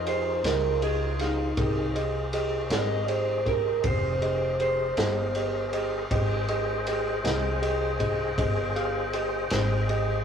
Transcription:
Already playing: F2 D#4 F4 G#4 C5
0.07 G4 G#4 C5 D#5, ride
0.43 C#2 G4 G#4 A#4 D#5, snare, ride
0.82 G4 G#4 D#5, ride
1.19 D#4 G4 G#4 F5, snare, ride
1.57 C2 G4 G#4 A#4 C5 D#5, kick, ride
1.95 G4 G#4 D#5, ride
2.33 G4 G#4 D#5, ride
2.70 G#1 G4 G#4 A#4 D#5, snare, ride
3.08 G4 G#4 C5 D#5, ride
3.46 G4 G#4 A#4, kick, ride
3.84 F1 G4 G#4 C5, kick, ride
4.22 G4 G#4 D#5, ride
4.60 G4 G#4 C5, ride
4.97 G1 G4 G#4 D#5, snare, ride
5.35 G4 G#4 D#5, ride
5.73 G4 G#4 D#5, ride
6.10 G#1 G4 G#4 C5 D#5 G5, kick, ride
6.48 G4 G#4 D#5, ride
6.87 G4 G#4 D#5, ride
7.24 C2 G4 G#4 D#5, snare, ride
7.62 G4 G#4 D#5, ride
8.00 G4 G#4 D#5, kick, ride
8.38 G1 G4 G#4 D#5, kick, ride
8.76 G4 G#4 F5, ride
9.13 G4 G#4 D#5, ride
9.50 G#1 G4 G#4 C5, snare, ride
9.89 G4 G#4 D#5, ride

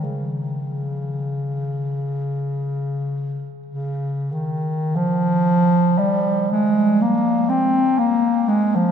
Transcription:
0.04 C#3
3.66 C#3
4.32 D#3
4.96 F3
5.98 G3
6.51 G#3
7.02 A#3
7.49 C4
7.99 A#3
8.48 G#3
8.75 F3

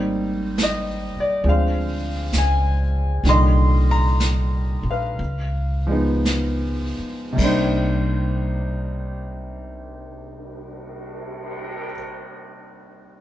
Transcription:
Already playing: G#1 G3 A#3 C4 D#4
0.58 snare, hi-hat pedal
0.63 D#5
1.16 muted upright bass stroke
1.20 D5
1.44 D2 F3 G#3 C4 D4, brush sweep
1.49 C5 F5
2.33 C#2, snare, hi-hat pedal
2.38 G#5
3.24 C2 A#2 D3 D#3 G3, brush sweep, snare
3.29 D#5 C6
3.91 A#5
4.20 snare, hi-hat pedal
4.83 A#1
4.91 B4 F5
5.19 C#2, brush sweep
5.87 F3 G#3 B3
5.91 D#4
6.25 snare, hi-hat pedal
6.99 muted upright bass stroke
7.33 C3 G3
7.38 C2 A#3 D4, kick, crash
7.44 D#4 C5
8.16 cymbal swell

